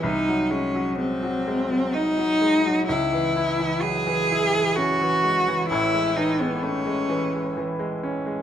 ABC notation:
X:1
M:3/4
L:1/16
Q:1/4=64
K:C#m
V:1 name="Cello"
D2 C2 ^B,4 D4 | E4 G4 F4 | E2 D B, C4 z4 |]
V:2 name="Grand piano" clef=bass
^B,,, F, G, F, G, F, G, F, D F, G, F, | C,, E, E E, F, E, E E, C E, G, E, | [A,,,A,,] G, E, G, A, G, E, G, E, G, C G, |]